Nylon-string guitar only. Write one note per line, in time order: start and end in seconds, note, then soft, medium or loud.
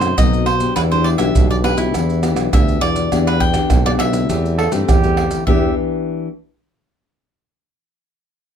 0.00 0.16 B2 medium
0.00 0.13 A3 medium
0.00 0.13 C4 medium
0.00 0.14 D#4 medium
0.18 0.74 F#3 medium
0.18 0.46 A3 medium
0.18 0.46 C4 medium
0.18 0.47 D#4 medium
0.60 0.91 B3 medium
0.60 0.91 D4 soft
0.60 0.92 G4 medium
0.77 1.33 E3 medium
0.92 1.17 B3 medium
0.92 1.17 D4 medium
0.92 1.17 G4 medium
1.19 1.60 B3 medium
1.19 1.60 D4 medium
1.19 1.60 G4 medium
1.36 1.92 B2 medium
1.64 2.19 B3 medium
1.64 2.19 D4 medium
1.64 2.19 G4 medium
1.94 2.50 E3 medium
2.23 2.48 B3 medium
2.23 2.48 D4 medium
2.23 2.49 G4 medium
2.53 3.09 B2 medium
2.53 3.08 B3 medium
2.53 3.08 D4 medium
2.53 3.08 G4 medium
3.12 3.68 E3 medium
3.12 3.51 B3 medium
3.12 3.52 D4 medium
3.12 3.52 G4 medium
3.54 3.80 B3 medium
3.54 3.80 D4 medium
3.54 3.80 G4 medium
3.70 4.27 B2 soft
3.86 4.25 B3 medium
3.86 4.25 D4 medium
3.86 4.26 G4 medium
4.29 4.85 E3 medium
4.29 4.57 A3 medium
4.29 4.57 C4 medium
4.29 4.58 G4 medium
4.72 4.97 A3 medium
4.72 4.98 C4 medium
4.72 4.98 G4 medium
4.88 5.44 E3 medium
5.03 5.43 A3 medium
5.03 5.43 C4 medium
5.03 5.43 G4 medium
5.47 6.27 E3 medium
5.47 6.27 B3 medium
5.47 6.27 D4 medium
5.47 6.27 G4 medium